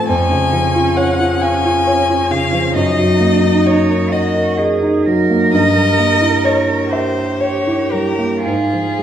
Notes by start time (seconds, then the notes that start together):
Already playing: F3 A3 F4 C5 F5
0.08 F2 C#4 G#5
0.32 C#3
0.53 F3
0.75 F4
0.96 C#5 F#5
1.20 F4
1.41 F5 G#5
1.65 F4
1.87 C#5
2.10 F4
2.31 C#3 F5
2.53 F3
2.74 F#2 D#4 D#5
2.99 F#3
3.20 A#3
3.43 D#4
3.66 C#5 D#5
3.89 A#4
4.11 F#4 D#5
4.36 A#4
4.57 G#4 D#5
4.83 D#4
5.05 F#3 A#4
5.30 A#3
5.51 G2 D#5
5.76 G3
5.99 A#3
6.21 E4
6.44 C#5
6.70 A#4
6.91 G4 C5 E5
7.17 A#4
7.40 C#5
7.67 E4
7.92 G3 A#4
8.18 A#3
8.44 G#2 F4 G#4
8.73 F3
8.99 G#3